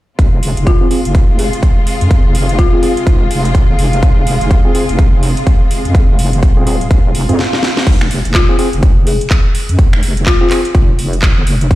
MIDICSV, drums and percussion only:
0, 0, Header, 1, 2, 480
1, 0, Start_track
1, 0, Key_signature, -4, "minor"
1, 0, Tempo, 480000
1, 187, Time_signature, 4, 2, 24, 8
1, 11752, End_track
2, 0, Start_track
2, 0, Title_t, "Drums"
2, 187, Note_on_c, 9, 36, 101
2, 188, Note_on_c, 9, 42, 48
2, 287, Note_off_c, 9, 36, 0
2, 288, Note_off_c, 9, 42, 0
2, 427, Note_on_c, 9, 46, 96
2, 527, Note_off_c, 9, 46, 0
2, 572, Note_on_c, 9, 42, 63
2, 667, Note_on_c, 9, 36, 99
2, 668, Note_off_c, 9, 42, 0
2, 668, Note_on_c, 9, 42, 50
2, 767, Note_off_c, 9, 36, 0
2, 768, Note_off_c, 9, 42, 0
2, 907, Note_on_c, 9, 46, 93
2, 1007, Note_off_c, 9, 46, 0
2, 1053, Note_on_c, 9, 42, 64
2, 1147, Note_on_c, 9, 36, 111
2, 1148, Note_off_c, 9, 42, 0
2, 1148, Note_on_c, 9, 42, 49
2, 1247, Note_off_c, 9, 36, 0
2, 1248, Note_off_c, 9, 42, 0
2, 1388, Note_on_c, 9, 46, 99
2, 1488, Note_off_c, 9, 46, 0
2, 1532, Note_on_c, 9, 42, 62
2, 1627, Note_on_c, 9, 36, 94
2, 1628, Note_off_c, 9, 42, 0
2, 1628, Note_on_c, 9, 42, 50
2, 1727, Note_off_c, 9, 36, 0
2, 1728, Note_off_c, 9, 42, 0
2, 1868, Note_on_c, 9, 46, 97
2, 1968, Note_off_c, 9, 46, 0
2, 2013, Note_on_c, 9, 42, 64
2, 2107, Note_on_c, 9, 36, 106
2, 2108, Note_off_c, 9, 42, 0
2, 2108, Note_on_c, 9, 42, 48
2, 2207, Note_off_c, 9, 36, 0
2, 2208, Note_off_c, 9, 42, 0
2, 2348, Note_on_c, 9, 46, 106
2, 2448, Note_off_c, 9, 46, 0
2, 2492, Note_on_c, 9, 42, 60
2, 2587, Note_on_c, 9, 36, 99
2, 2588, Note_off_c, 9, 42, 0
2, 2588, Note_on_c, 9, 42, 50
2, 2687, Note_off_c, 9, 36, 0
2, 2688, Note_off_c, 9, 42, 0
2, 2828, Note_on_c, 9, 46, 100
2, 2928, Note_off_c, 9, 46, 0
2, 2972, Note_on_c, 9, 42, 62
2, 3067, Note_on_c, 9, 36, 110
2, 3068, Note_off_c, 9, 42, 0
2, 3068, Note_on_c, 9, 42, 50
2, 3167, Note_off_c, 9, 36, 0
2, 3168, Note_off_c, 9, 42, 0
2, 3307, Note_on_c, 9, 46, 101
2, 3407, Note_off_c, 9, 46, 0
2, 3452, Note_on_c, 9, 42, 65
2, 3547, Note_on_c, 9, 36, 99
2, 3548, Note_off_c, 9, 42, 0
2, 3548, Note_on_c, 9, 42, 50
2, 3647, Note_off_c, 9, 36, 0
2, 3648, Note_off_c, 9, 42, 0
2, 3787, Note_on_c, 9, 46, 101
2, 3887, Note_off_c, 9, 46, 0
2, 3932, Note_on_c, 9, 42, 62
2, 4027, Note_on_c, 9, 36, 112
2, 4028, Note_off_c, 9, 42, 0
2, 4028, Note_on_c, 9, 42, 48
2, 4127, Note_off_c, 9, 36, 0
2, 4128, Note_off_c, 9, 42, 0
2, 4267, Note_on_c, 9, 46, 106
2, 4367, Note_off_c, 9, 46, 0
2, 4412, Note_on_c, 9, 42, 60
2, 4507, Note_on_c, 9, 36, 102
2, 4508, Note_off_c, 9, 42, 0
2, 4508, Note_on_c, 9, 42, 47
2, 4607, Note_off_c, 9, 36, 0
2, 4608, Note_off_c, 9, 42, 0
2, 4748, Note_on_c, 9, 46, 101
2, 4847, Note_off_c, 9, 46, 0
2, 4892, Note_on_c, 9, 42, 59
2, 4987, Note_off_c, 9, 42, 0
2, 4987, Note_on_c, 9, 36, 110
2, 4987, Note_on_c, 9, 42, 48
2, 5087, Note_off_c, 9, 36, 0
2, 5087, Note_off_c, 9, 42, 0
2, 5227, Note_on_c, 9, 46, 103
2, 5327, Note_off_c, 9, 46, 0
2, 5372, Note_on_c, 9, 42, 62
2, 5467, Note_on_c, 9, 36, 102
2, 5468, Note_off_c, 9, 42, 0
2, 5468, Note_on_c, 9, 42, 48
2, 5567, Note_off_c, 9, 36, 0
2, 5568, Note_off_c, 9, 42, 0
2, 5708, Note_on_c, 9, 46, 102
2, 5808, Note_off_c, 9, 46, 0
2, 5853, Note_on_c, 9, 42, 59
2, 5947, Note_on_c, 9, 36, 110
2, 5948, Note_off_c, 9, 42, 0
2, 5948, Note_on_c, 9, 42, 46
2, 6047, Note_off_c, 9, 36, 0
2, 6048, Note_off_c, 9, 42, 0
2, 6188, Note_on_c, 9, 46, 107
2, 6288, Note_off_c, 9, 46, 0
2, 6332, Note_on_c, 9, 42, 60
2, 6427, Note_on_c, 9, 36, 106
2, 6428, Note_off_c, 9, 42, 0
2, 6428, Note_on_c, 9, 42, 49
2, 6527, Note_off_c, 9, 36, 0
2, 6528, Note_off_c, 9, 42, 0
2, 6667, Note_on_c, 9, 46, 100
2, 6767, Note_off_c, 9, 46, 0
2, 6812, Note_on_c, 9, 42, 60
2, 6907, Note_on_c, 9, 36, 118
2, 6908, Note_off_c, 9, 42, 0
2, 6908, Note_on_c, 9, 42, 47
2, 7007, Note_off_c, 9, 36, 0
2, 7007, Note_off_c, 9, 42, 0
2, 7148, Note_on_c, 9, 46, 109
2, 7248, Note_off_c, 9, 46, 0
2, 7292, Note_on_c, 9, 42, 60
2, 7388, Note_on_c, 9, 38, 59
2, 7392, Note_off_c, 9, 42, 0
2, 7488, Note_off_c, 9, 38, 0
2, 7532, Note_on_c, 9, 38, 59
2, 7627, Note_off_c, 9, 38, 0
2, 7627, Note_on_c, 9, 38, 81
2, 7727, Note_off_c, 9, 38, 0
2, 7772, Note_on_c, 9, 38, 81
2, 7867, Note_on_c, 9, 36, 111
2, 7867, Note_on_c, 9, 42, 52
2, 7867, Note_on_c, 9, 49, 91
2, 7872, Note_off_c, 9, 38, 0
2, 7967, Note_off_c, 9, 36, 0
2, 7967, Note_off_c, 9, 42, 0
2, 7967, Note_off_c, 9, 49, 0
2, 8012, Note_on_c, 9, 26, 73
2, 8108, Note_on_c, 9, 46, 103
2, 8112, Note_off_c, 9, 26, 0
2, 8208, Note_off_c, 9, 46, 0
2, 8252, Note_on_c, 9, 42, 68
2, 8342, Note_on_c, 9, 39, 122
2, 8347, Note_on_c, 9, 36, 105
2, 8348, Note_off_c, 9, 42, 0
2, 8348, Note_on_c, 9, 42, 54
2, 8442, Note_off_c, 9, 39, 0
2, 8447, Note_off_c, 9, 36, 0
2, 8448, Note_off_c, 9, 42, 0
2, 8588, Note_on_c, 9, 46, 102
2, 8688, Note_off_c, 9, 46, 0
2, 8732, Note_on_c, 9, 42, 68
2, 8827, Note_off_c, 9, 42, 0
2, 8827, Note_on_c, 9, 36, 110
2, 8827, Note_on_c, 9, 42, 54
2, 8927, Note_off_c, 9, 36, 0
2, 8927, Note_off_c, 9, 42, 0
2, 9067, Note_on_c, 9, 46, 102
2, 9167, Note_off_c, 9, 46, 0
2, 9212, Note_on_c, 9, 42, 68
2, 9302, Note_on_c, 9, 39, 118
2, 9307, Note_on_c, 9, 36, 101
2, 9308, Note_off_c, 9, 42, 0
2, 9308, Note_on_c, 9, 42, 54
2, 9402, Note_off_c, 9, 39, 0
2, 9407, Note_off_c, 9, 36, 0
2, 9407, Note_off_c, 9, 42, 0
2, 9547, Note_on_c, 9, 46, 106
2, 9647, Note_off_c, 9, 46, 0
2, 9691, Note_on_c, 9, 42, 69
2, 9787, Note_off_c, 9, 42, 0
2, 9787, Note_on_c, 9, 36, 110
2, 9787, Note_on_c, 9, 42, 50
2, 9887, Note_off_c, 9, 36, 0
2, 9887, Note_off_c, 9, 42, 0
2, 9932, Note_on_c, 9, 26, 78
2, 10027, Note_on_c, 9, 46, 108
2, 10032, Note_off_c, 9, 26, 0
2, 10127, Note_off_c, 9, 46, 0
2, 10172, Note_on_c, 9, 42, 63
2, 10262, Note_on_c, 9, 39, 119
2, 10267, Note_on_c, 9, 36, 108
2, 10268, Note_off_c, 9, 42, 0
2, 10268, Note_on_c, 9, 42, 54
2, 10362, Note_off_c, 9, 39, 0
2, 10367, Note_off_c, 9, 36, 0
2, 10368, Note_off_c, 9, 42, 0
2, 10502, Note_on_c, 9, 39, 63
2, 10508, Note_on_c, 9, 46, 105
2, 10602, Note_off_c, 9, 39, 0
2, 10608, Note_off_c, 9, 46, 0
2, 10652, Note_on_c, 9, 42, 66
2, 10747, Note_off_c, 9, 42, 0
2, 10747, Note_on_c, 9, 36, 121
2, 10747, Note_on_c, 9, 42, 52
2, 10847, Note_off_c, 9, 36, 0
2, 10847, Note_off_c, 9, 42, 0
2, 10987, Note_on_c, 9, 46, 107
2, 11087, Note_off_c, 9, 46, 0
2, 11132, Note_on_c, 9, 42, 66
2, 11222, Note_on_c, 9, 39, 122
2, 11227, Note_on_c, 9, 36, 101
2, 11228, Note_off_c, 9, 42, 0
2, 11228, Note_on_c, 9, 42, 50
2, 11322, Note_off_c, 9, 39, 0
2, 11327, Note_off_c, 9, 36, 0
2, 11328, Note_off_c, 9, 42, 0
2, 11468, Note_on_c, 9, 46, 106
2, 11568, Note_off_c, 9, 46, 0
2, 11613, Note_on_c, 9, 42, 64
2, 11707, Note_on_c, 9, 36, 116
2, 11708, Note_off_c, 9, 42, 0
2, 11708, Note_on_c, 9, 42, 49
2, 11752, Note_off_c, 9, 36, 0
2, 11752, Note_off_c, 9, 42, 0
2, 11752, End_track
0, 0, End_of_file